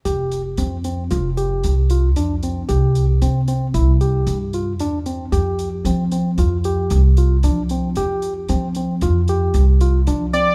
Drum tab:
HH |xxxxxxxxxx|xxxxxxxxxx|xxxxxxxxxx|xxxxxxxxxx|